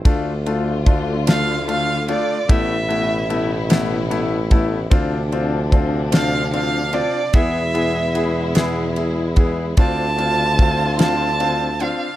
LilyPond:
<<
  \new Staff \with { instrumentName = "Violin" } { \time 6/8 \key d \dorian \tempo 4. = 49 r4. f''8 f''8 d''8 | e''4. r4. | r4. f''8 f''8 d''8 | e''4. r4. |
a''4. a''4 f''8 | }
  \new Staff \with { instrumentName = "Grand piano" } { \time 6/8 \key d \dorian <a d' f'>8 <a d' f'>8 <a d' f'>8 <a d' f'>8 <a d' f'>8 <a d' f'>8 | <a b e'>8 <a b e'>8 <a b e'>8 <a b e'>8 <a b e'>8 <a b e'>8 | <c' d' f'>8 <c' d' f'>8 <c' d' f'>8 <c' d' f'>8 <c' d' f'>8 <c' d' f'>8 | <b e' gis'>8 <b e' gis'>8 <b e' gis'>8 <b e' gis'>8 <e' gis'>8 <b e' gis'>8 |
<c' d' f'>8 <c' d' f'>8 <c' d' f'>8 <c' d' f'>8 <c' d' f'>8 <c' d' f'>8 | }
  \new Staff \with { instrumentName = "String section" } { \clef bass \time 6/8 \key d \dorian << { <d f'>2. | <b, e'>2. | <c d'>2. | <b, e'>2. |
<d f'>2. | } \\ { a2.~ | a2. | f2. | gis2. |
c'2. | } >> }
  \new Staff \with { instrumentName = "Tuba" } { \clef bass \time 6/8 \key d \dorian d,2~ d,8 r8 | a,,2. | d,2~ d,8 r8 | e,2. |
d,2~ d,8 r8 | }
  \new DrumStaff \with { instrumentName = "Drums" } \drummode { \time 6/8 <bd cymr>8 cymr8 <bd cymr>8 <cymr sn>8 cymr8 cymr8 | <bd cymr>8 cymr8 cymr8 <cymr sn>8 cymr8 <bd cymr>8 | <bd cymr>8 cymr8 <bd cymr>8 <cymr sn>8 cymr8 cymr8 | <bd cymr>8 cymr8 cymr8 <cymr sn>8 cymr8 <bd cymr>8 |
<bd cymr>8 cymr8 <bd cymr>8 <cymr sn>8 cymr8 cymr8 | }
>>